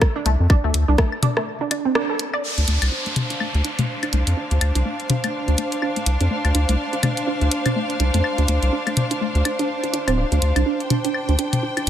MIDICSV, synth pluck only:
0, 0, Header, 1, 2, 480
1, 0, Start_track
1, 0, Key_signature, -1, "minor"
1, 0, Tempo, 483871
1, 495, Time_signature, 4, 2, 24, 8
1, 11802, End_track
2, 0, Start_track
2, 0, Title_t, "Synth pluck"
2, 0, Program_c, 0, 84
2, 156, Note_on_c, 0, 62, 79
2, 181, Note_off_c, 0, 62, 0
2, 255, Note_on_c, 0, 57, 78
2, 276, Note_off_c, 0, 57, 0
2, 495, Note_on_c, 0, 62, 80
2, 530, Note_off_c, 0, 62, 0
2, 636, Note_on_c, 0, 57, 80
2, 656, Note_off_c, 0, 57, 0
2, 876, Note_on_c, 0, 62, 77
2, 901, Note_off_c, 0, 62, 0
2, 975, Note_on_c, 0, 57, 80
2, 996, Note_off_c, 0, 57, 0
2, 1216, Note_on_c, 0, 62, 78
2, 1251, Note_off_c, 0, 62, 0
2, 1356, Note_on_c, 0, 57, 76
2, 1376, Note_off_c, 0, 57, 0
2, 1596, Note_on_c, 0, 62, 73
2, 1621, Note_off_c, 0, 62, 0
2, 1697, Note_on_c, 0, 62, 76
2, 1731, Note_off_c, 0, 62, 0
2, 1837, Note_on_c, 0, 60, 78
2, 1861, Note_off_c, 0, 60, 0
2, 1936, Note_on_c, 0, 62, 98
2, 1971, Note_off_c, 0, 62, 0
2, 2078, Note_on_c, 0, 69, 81
2, 2102, Note_off_c, 0, 69, 0
2, 2317, Note_on_c, 0, 74, 104
2, 2337, Note_off_c, 0, 74, 0
2, 2557, Note_on_c, 0, 62, 74
2, 2581, Note_off_c, 0, 62, 0
2, 2656, Note_on_c, 0, 57, 76
2, 2677, Note_off_c, 0, 57, 0
2, 2895, Note_on_c, 0, 62, 75
2, 2930, Note_off_c, 0, 62, 0
2, 3036, Note_on_c, 0, 57, 76
2, 3056, Note_off_c, 0, 57, 0
2, 3277, Note_on_c, 0, 62, 71
2, 3301, Note_off_c, 0, 62, 0
2, 3376, Note_on_c, 0, 57, 80
2, 3397, Note_off_c, 0, 57, 0
2, 3616, Note_on_c, 0, 62, 72
2, 3651, Note_off_c, 0, 62, 0
2, 3756, Note_on_c, 0, 57, 76
2, 3776, Note_off_c, 0, 57, 0
2, 3996, Note_on_c, 0, 62, 75
2, 4021, Note_off_c, 0, 62, 0
2, 4096, Note_on_c, 0, 57, 73
2, 4117, Note_off_c, 0, 57, 0
2, 4335, Note_on_c, 0, 62, 79
2, 4370, Note_off_c, 0, 62, 0
2, 4476, Note_on_c, 0, 57, 74
2, 4496, Note_off_c, 0, 57, 0
2, 4714, Note_on_c, 0, 62, 75
2, 4740, Note_off_c, 0, 62, 0
2, 4814, Note_on_c, 0, 57, 77
2, 4836, Note_off_c, 0, 57, 0
2, 5055, Note_on_c, 0, 62, 76
2, 5091, Note_off_c, 0, 62, 0
2, 5196, Note_on_c, 0, 57, 70
2, 5216, Note_off_c, 0, 57, 0
2, 5436, Note_on_c, 0, 62, 72
2, 5461, Note_off_c, 0, 62, 0
2, 5535, Note_on_c, 0, 57, 71
2, 5556, Note_off_c, 0, 57, 0
2, 5776, Note_on_c, 0, 62, 76
2, 5811, Note_off_c, 0, 62, 0
2, 5916, Note_on_c, 0, 57, 75
2, 5936, Note_off_c, 0, 57, 0
2, 6156, Note_on_c, 0, 62, 75
2, 6181, Note_off_c, 0, 62, 0
2, 6254, Note_on_c, 0, 57, 77
2, 6276, Note_off_c, 0, 57, 0
2, 6494, Note_on_c, 0, 62, 75
2, 6530, Note_off_c, 0, 62, 0
2, 6635, Note_on_c, 0, 57, 74
2, 6655, Note_off_c, 0, 57, 0
2, 6875, Note_on_c, 0, 62, 74
2, 6900, Note_off_c, 0, 62, 0
2, 6975, Note_on_c, 0, 57, 78
2, 6996, Note_off_c, 0, 57, 0
2, 7214, Note_on_c, 0, 62, 79
2, 7250, Note_off_c, 0, 62, 0
2, 7355, Note_on_c, 0, 57, 72
2, 7375, Note_off_c, 0, 57, 0
2, 7596, Note_on_c, 0, 62, 76
2, 7621, Note_off_c, 0, 62, 0
2, 7696, Note_on_c, 0, 57, 78
2, 7717, Note_off_c, 0, 57, 0
2, 7936, Note_on_c, 0, 62, 78
2, 7971, Note_off_c, 0, 62, 0
2, 8077, Note_on_c, 0, 57, 77
2, 8097, Note_off_c, 0, 57, 0
2, 8316, Note_on_c, 0, 62, 74
2, 8341, Note_off_c, 0, 62, 0
2, 8415, Note_on_c, 0, 57, 77
2, 8437, Note_off_c, 0, 57, 0
2, 8656, Note_on_c, 0, 62, 78
2, 8691, Note_off_c, 0, 62, 0
2, 8796, Note_on_c, 0, 57, 74
2, 8816, Note_off_c, 0, 57, 0
2, 9036, Note_on_c, 0, 62, 75
2, 9061, Note_off_c, 0, 62, 0
2, 9136, Note_on_c, 0, 57, 80
2, 9157, Note_off_c, 0, 57, 0
2, 9377, Note_on_c, 0, 62, 75
2, 9411, Note_off_c, 0, 62, 0
2, 9515, Note_on_c, 0, 62, 99
2, 9553, Note_off_c, 0, 62, 0
2, 9755, Note_on_c, 0, 62, 76
2, 9793, Note_off_c, 0, 62, 0
2, 9854, Note_on_c, 0, 62, 98
2, 9907, Note_off_c, 0, 62, 0
2, 9994, Note_on_c, 0, 60, 100
2, 10020, Note_off_c, 0, 60, 0
2, 10094, Note_on_c, 0, 62, 81
2, 10130, Note_off_c, 0, 62, 0
2, 10236, Note_on_c, 0, 62, 76
2, 10273, Note_off_c, 0, 62, 0
2, 10474, Note_on_c, 0, 62, 72
2, 10500, Note_off_c, 0, 62, 0
2, 10574, Note_on_c, 0, 62, 80
2, 10627, Note_off_c, 0, 62, 0
2, 10814, Note_on_c, 0, 62, 73
2, 10850, Note_off_c, 0, 62, 0
2, 10956, Note_on_c, 0, 62, 73
2, 10993, Note_off_c, 0, 62, 0
2, 11195, Note_on_c, 0, 62, 72
2, 11221, Note_off_c, 0, 62, 0
2, 11296, Note_on_c, 0, 62, 75
2, 11349, Note_off_c, 0, 62, 0
2, 11535, Note_on_c, 0, 62, 78
2, 11571, Note_off_c, 0, 62, 0
2, 11676, Note_on_c, 0, 62, 75
2, 11713, Note_off_c, 0, 62, 0
2, 11802, End_track
0, 0, End_of_file